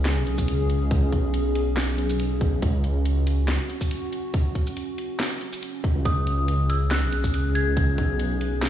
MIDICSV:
0, 0, Header, 1, 5, 480
1, 0, Start_track
1, 0, Tempo, 428571
1, 1019, Time_signature, 4, 2, 24, 8
1, 9736, End_track
2, 0, Start_track
2, 0, Title_t, "Synth bell"
2, 0, Program_c, 0, 98
2, 6782, Note_on_c, 0, 87, 86
2, 7500, Note_on_c, 0, 88, 92
2, 7522, Note_off_c, 0, 87, 0
2, 7740, Note_on_c, 0, 90, 104
2, 7747, Note_off_c, 0, 88, 0
2, 8458, Note_on_c, 0, 92, 106
2, 8481, Note_off_c, 0, 90, 0
2, 9374, Note_off_c, 0, 92, 0
2, 9736, End_track
3, 0, Start_track
3, 0, Title_t, "Analog synth pad"
3, 0, Program_c, 1, 89
3, 0, Note_on_c, 1, 61, 81
3, 0, Note_on_c, 1, 68, 83
3, 2939, Note_on_c, 1, 66, 82
3, 2965, Note_off_c, 1, 68, 0
3, 6768, Note_off_c, 1, 61, 0
3, 6781, Note_on_c, 1, 61, 81
3, 6781, Note_on_c, 1, 68, 84
3, 6804, Note_off_c, 1, 66, 0
3, 9736, Note_off_c, 1, 61, 0
3, 9736, Note_off_c, 1, 68, 0
3, 9736, End_track
4, 0, Start_track
4, 0, Title_t, "Detuned saw bass"
4, 0, Program_c, 2, 39
4, 0, Note_on_c, 2, 37, 100
4, 190, Note_on_c, 2, 35, 87
4, 206, Note_off_c, 2, 37, 0
4, 541, Note_on_c, 2, 37, 98
4, 557, Note_off_c, 2, 35, 0
4, 891, Note_off_c, 2, 37, 0
4, 908, Note_on_c, 2, 37, 100
4, 1245, Note_off_c, 2, 37, 0
4, 1260, Note_on_c, 2, 35, 90
4, 2925, Note_off_c, 2, 35, 0
4, 2940, Note_on_c, 2, 37, 102
4, 4011, Note_off_c, 2, 37, 0
4, 6669, Note_on_c, 2, 37, 98
4, 6771, Note_off_c, 2, 37, 0
4, 6781, Note_on_c, 2, 37, 103
4, 7868, Note_on_c, 2, 35, 88
4, 7885, Note_off_c, 2, 37, 0
4, 8219, Note_on_c, 2, 37, 97
4, 8235, Note_off_c, 2, 35, 0
4, 8570, Note_off_c, 2, 37, 0
4, 8587, Note_on_c, 2, 37, 102
4, 8925, Note_off_c, 2, 37, 0
4, 8939, Note_on_c, 2, 35, 89
4, 9736, Note_off_c, 2, 35, 0
4, 9736, End_track
5, 0, Start_track
5, 0, Title_t, "Drums"
5, 59, Note_on_c, 9, 38, 121
5, 59, Note_on_c, 9, 39, 86
5, 59, Note_on_c, 9, 42, 80
5, 171, Note_off_c, 9, 38, 0
5, 171, Note_off_c, 9, 39, 0
5, 171, Note_off_c, 9, 42, 0
5, 300, Note_on_c, 9, 42, 50
5, 412, Note_off_c, 9, 42, 0
5, 427, Note_on_c, 9, 82, 87
5, 428, Note_on_c, 9, 36, 61
5, 539, Note_off_c, 9, 82, 0
5, 540, Note_off_c, 9, 36, 0
5, 540, Note_on_c, 9, 42, 76
5, 652, Note_off_c, 9, 42, 0
5, 779, Note_on_c, 9, 42, 51
5, 891, Note_off_c, 9, 42, 0
5, 1020, Note_on_c, 9, 36, 118
5, 1020, Note_on_c, 9, 42, 77
5, 1132, Note_off_c, 9, 36, 0
5, 1132, Note_off_c, 9, 42, 0
5, 1260, Note_on_c, 9, 36, 61
5, 1260, Note_on_c, 9, 42, 53
5, 1372, Note_off_c, 9, 36, 0
5, 1372, Note_off_c, 9, 42, 0
5, 1498, Note_on_c, 9, 42, 79
5, 1610, Note_off_c, 9, 42, 0
5, 1741, Note_on_c, 9, 46, 93
5, 1853, Note_off_c, 9, 46, 0
5, 1980, Note_on_c, 9, 38, 118
5, 1980, Note_on_c, 9, 39, 89
5, 1980, Note_on_c, 9, 42, 81
5, 2092, Note_off_c, 9, 38, 0
5, 2092, Note_off_c, 9, 39, 0
5, 2092, Note_off_c, 9, 42, 0
5, 2220, Note_on_c, 9, 42, 52
5, 2332, Note_off_c, 9, 42, 0
5, 2348, Note_on_c, 9, 82, 86
5, 2460, Note_off_c, 9, 82, 0
5, 2460, Note_on_c, 9, 42, 79
5, 2572, Note_off_c, 9, 42, 0
5, 2700, Note_on_c, 9, 36, 98
5, 2700, Note_on_c, 9, 42, 54
5, 2812, Note_off_c, 9, 36, 0
5, 2812, Note_off_c, 9, 42, 0
5, 2939, Note_on_c, 9, 36, 117
5, 2939, Note_on_c, 9, 42, 82
5, 3051, Note_off_c, 9, 36, 0
5, 3051, Note_off_c, 9, 42, 0
5, 3180, Note_on_c, 9, 42, 56
5, 3292, Note_off_c, 9, 42, 0
5, 3421, Note_on_c, 9, 42, 81
5, 3533, Note_off_c, 9, 42, 0
5, 3661, Note_on_c, 9, 46, 98
5, 3773, Note_off_c, 9, 46, 0
5, 3900, Note_on_c, 9, 38, 116
5, 3900, Note_on_c, 9, 39, 89
5, 3900, Note_on_c, 9, 42, 83
5, 4012, Note_off_c, 9, 38, 0
5, 4012, Note_off_c, 9, 39, 0
5, 4012, Note_off_c, 9, 42, 0
5, 4140, Note_on_c, 9, 42, 54
5, 4252, Note_off_c, 9, 42, 0
5, 4267, Note_on_c, 9, 36, 60
5, 4267, Note_on_c, 9, 82, 84
5, 4379, Note_off_c, 9, 36, 0
5, 4379, Note_off_c, 9, 82, 0
5, 4380, Note_on_c, 9, 42, 82
5, 4492, Note_off_c, 9, 42, 0
5, 4621, Note_on_c, 9, 42, 55
5, 4733, Note_off_c, 9, 42, 0
5, 4859, Note_on_c, 9, 36, 116
5, 4859, Note_on_c, 9, 42, 82
5, 4971, Note_off_c, 9, 36, 0
5, 4971, Note_off_c, 9, 42, 0
5, 5099, Note_on_c, 9, 36, 60
5, 5100, Note_on_c, 9, 42, 58
5, 5211, Note_off_c, 9, 36, 0
5, 5212, Note_off_c, 9, 42, 0
5, 5227, Note_on_c, 9, 82, 60
5, 5339, Note_off_c, 9, 82, 0
5, 5339, Note_on_c, 9, 42, 86
5, 5451, Note_off_c, 9, 42, 0
5, 5580, Note_on_c, 9, 46, 93
5, 5692, Note_off_c, 9, 46, 0
5, 5821, Note_on_c, 9, 38, 122
5, 5821, Note_on_c, 9, 39, 94
5, 5821, Note_on_c, 9, 42, 85
5, 5933, Note_off_c, 9, 38, 0
5, 5933, Note_off_c, 9, 39, 0
5, 5933, Note_off_c, 9, 42, 0
5, 6060, Note_on_c, 9, 42, 55
5, 6172, Note_off_c, 9, 42, 0
5, 6189, Note_on_c, 9, 82, 80
5, 6301, Note_off_c, 9, 82, 0
5, 6302, Note_on_c, 9, 42, 86
5, 6414, Note_off_c, 9, 42, 0
5, 6540, Note_on_c, 9, 36, 102
5, 6542, Note_on_c, 9, 42, 58
5, 6652, Note_off_c, 9, 36, 0
5, 6654, Note_off_c, 9, 42, 0
5, 6780, Note_on_c, 9, 36, 125
5, 6782, Note_on_c, 9, 42, 86
5, 6892, Note_off_c, 9, 36, 0
5, 6894, Note_off_c, 9, 42, 0
5, 7022, Note_on_c, 9, 42, 56
5, 7134, Note_off_c, 9, 42, 0
5, 7260, Note_on_c, 9, 42, 87
5, 7372, Note_off_c, 9, 42, 0
5, 7500, Note_on_c, 9, 46, 91
5, 7612, Note_off_c, 9, 46, 0
5, 7740, Note_on_c, 9, 38, 126
5, 7740, Note_on_c, 9, 39, 94
5, 7740, Note_on_c, 9, 42, 84
5, 7852, Note_off_c, 9, 38, 0
5, 7852, Note_off_c, 9, 39, 0
5, 7852, Note_off_c, 9, 42, 0
5, 7980, Note_on_c, 9, 42, 55
5, 8092, Note_off_c, 9, 42, 0
5, 8107, Note_on_c, 9, 82, 78
5, 8108, Note_on_c, 9, 36, 60
5, 8219, Note_off_c, 9, 82, 0
5, 8220, Note_off_c, 9, 36, 0
5, 8220, Note_on_c, 9, 42, 85
5, 8332, Note_off_c, 9, 42, 0
5, 8460, Note_on_c, 9, 42, 55
5, 8572, Note_off_c, 9, 42, 0
5, 8699, Note_on_c, 9, 42, 82
5, 8700, Note_on_c, 9, 36, 127
5, 8811, Note_off_c, 9, 42, 0
5, 8812, Note_off_c, 9, 36, 0
5, 8939, Note_on_c, 9, 42, 55
5, 8940, Note_on_c, 9, 36, 64
5, 9051, Note_off_c, 9, 42, 0
5, 9052, Note_off_c, 9, 36, 0
5, 9178, Note_on_c, 9, 42, 82
5, 9290, Note_off_c, 9, 42, 0
5, 9419, Note_on_c, 9, 46, 90
5, 9531, Note_off_c, 9, 46, 0
5, 9659, Note_on_c, 9, 38, 127
5, 9659, Note_on_c, 9, 39, 97
5, 9659, Note_on_c, 9, 42, 82
5, 9736, Note_off_c, 9, 38, 0
5, 9736, Note_off_c, 9, 39, 0
5, 9736, Note_off_c, 9, 42, 0
5, 9736, End_track
0, 0, End_of_file